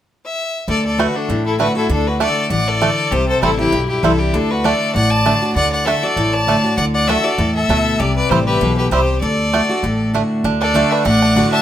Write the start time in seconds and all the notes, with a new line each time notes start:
0.25 E5
0.68 D2 D3 A4 D5
0.85 A4 D5
0.98 D3 A3 D4 F#4 B4
1.16 D4 A4
1.29 A1 A2
1.46 E4 A4
1.59 D3 A3 D4 F#4 B4
1.75 D4 E4 F#4 A4
1.89 D2 D3 D4 A4
2.07 F#4 B4
2.20 D3 A3 D4 F#4 A4 D5
2.50 A1 E3 D5 F#5
2.67 A4 D5
2.81 D3 A3 D4
3.11 C2 C3 G4 C5
3.28 A4 C5
3.42 A1 E3 G3 C4 E4 A4
3.59 C4 E4 G4
3.72 B1 G2
3.89 E4 G4
4.03 C2 E3 G3 C4 E4 A4
4.19 E4 G4
4.34 D2 D3 D4 A4
4.51 F#4 B4
4.64 D3 A3 D4 F#4 A4 D5
4.95 A1 A2 D5 F#5
5.10 D5 A5
5.25 D3 A3 D4 F#4
5.42 D4 F#4
5.55 D2 D3 D5 F#5
5.72 D5 F#5
5.85 D3 A3 D4 F#4 A4 E5
6.02 D4 F#4 A4 D5
6.16 A1 A2
6.33 D5 A5
6.47 D3 A3 D4 F#4
6.63 D4 F#4
6.77 D2 D3 D5 F#5
6.94 D5 F#5
7.08 D3 A3 D4 F#4 A4 E5
7.24 D4 F#4 A4 D5
7.38 E2 A2
7.54 A4 E5
7.69 D2 B2 A3 D4
7.99 C2 C3 G4 D5
8.16 B4 D5
8.29 A1 E3 G3 C4 E4 G4 C5
8.46 G4 B4
8.61 B1 B2
8.76 G4 B4
8.91 C2 C3 G3 C4 E4 G4 C5
9.21 D2 D3 A4 D5
9.53 D3 A3 D4 F#4
9.69 D4 F#4
9.83 A1 A2
10.14 D3 A3 D4 F#4
10.44 D2 D3 D4
10.61 D4 A4 D5
10.74 D3 A3 D4 F#4
10.91 D4 B4 E5
11.04 A1 A2 D4 D5 F#5
11.22 D4
11.35 D3 A3 D4 F#4
11.52 D4 E5 A5